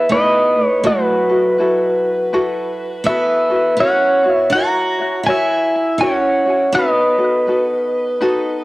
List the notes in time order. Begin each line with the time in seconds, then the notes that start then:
Already playing: E4 E5
0.09 B3 D#4 E4 G#4 B4 D#5
0.14 B4
0.61 A3
0.68 C#5
0.84 F#3 E4 F#4 A4 B4
0.89 F#4
1.29 E4 F#4 A4
1.58 E4 F#4 A4 B4
2.33 E4 F#4 A4 B4
3.04 B3 E4 F#4 A4 B4 E5
3.09 B4
3.50 E4 F#4 A4
3.77 C#4 E4 F#4 A#4 C#5 F#5
3.83 C#5
4.24 E4 F#4 C#5
4.30 B3
4.36 E5
4.50 F#4 A#4 A#5
4.54 E4 F#4 C#5 F#5
4.99 E4 F#4 C#5
5.23 E4 G#5
5.27 E4 F#4 A#4 C#5 E5
5.98 C#4 E4 F#4 A#4 F#5
6.02 C#5
6.45 E4 F#4 C#5
6.73 B3 D#4 F#4 A4 B4 D#5
6.79 B4
7.18 D#4 F#4 A4
7.47 D#4 F#4 A4 B4
8.21 D#4 F#4 A4 B4